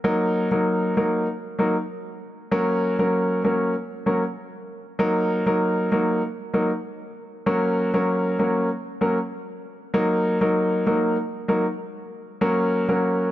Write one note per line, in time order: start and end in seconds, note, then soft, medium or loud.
0.04 0.48 F#3 medium
0.04 0.48 A#3 medium
0.04 0.48 D#4 medium
0.04 0.48 A#4 loud
0.51 0.93 F#3 medium
0.51 0.94 A#3 medium
0.51 0.94 D#4 medium
0.51 0.94 A#4 medium
0.97 1.26 F#3 medium
0.97 1.26 A#3 medium
0.97 1.26 D#4 medium
0.97 1.26 A#4 medium
1.59 1.74 F#3 medium
1.59 1.74 A#3 medium
1.59 1.75 D#4 medium
1.59 1.75 A#4 medium
2.51 2.95 F#3 medium
2.51 2.95 A#3 medium
2.51 2.95 C#4 medium
2.51 2.95 A#4 loud
2.99 3.41 F#3 medium
2.99 3.41 A#3 medium
2.99 3.41 C#4 medium
2.99 3.41 A#4 medium
3.44 3.73 F#3 medium
3.44 3.73 A#3 medium
3.44 3.73 C#4 medium
3.44 3.73 A#4 medium
4.06 4.22 F#3 medium
4.06 4.22 A#3 medium
4.06 4.22 C#4 medium
4.06 4.22 A#4 medium
4.99 5.42 F#3 medium
4.99 5.43 A#3 medium
4.99 5.43 D#4 medium
4.99 5.43 A#4 loud
5.46 5.88 F#3 medium
5.46 5.88 A#3 medium
5.46 5.89 D#4 medium
5.46 5.89 A#4 medium
5.92 6.20 F#3 medium
5.92 6.21 A#3 medium
5.92 6.21 D#4 medium
5.92 6.21 A#4 medium
6.54 6.69 F#3 medium
6.54 6.69 A#3 medium
6.54 6.69 D#4 medium
6.54 6.70 A#4 medium
7.46 7.90 F#3 medium
7.46 7.90 A#3 medium
7.46 7.90 C#4 medium
7.46 7.90 A#4 loud
7.94 8.36 F#3 medium
7.94 8.36 A#3 medium
7.94 8.36 C#4 medium
7.94 8.36 A#4 medium
8.39 8.68 F#3 medium
8.39 8.68 A#3 medium
8.39 8.68 C#4 medium
8.39 8.68 A#4 medium
9.01 9.17 F#3 medium
9.01 9.17 A#3 medium
9.01 9.17 C#4 medium
9.01 9.17 A#4 medium
9.94 10.37 F#3 medium
9.94 10.37 A#3 medium
9.94 10.37 D#4 medium
9.94 10.38 A#4 loud
10.41 10.83 F#3 medium
10.41 10.83 A#3 medium
10.41 10.83 D#4 medium
10.41 10.83 A#4 medium
10.86 11.15 F#3 medium
10.86 11.15 A#3 medium
10.86 11.15 D#4 medium
10.86 11.16 A#4 medium
11.48 11.64 F#3 medium
11.48 11.64 A#3 medium
11.48 11.64 D#4 medium
11.48 11.64 A#4 medium
12.41 12.85 F#3 medium
12.41 12.85 A#3 medium
12.41 12.85 C#4 medium
12.41 12.85 A#4 loud
12.88 13.31 F#3 medium
12.88 13.31 A#3 medium
12.88 13.31 C#4 medium
12.88 13.31 A#4 medium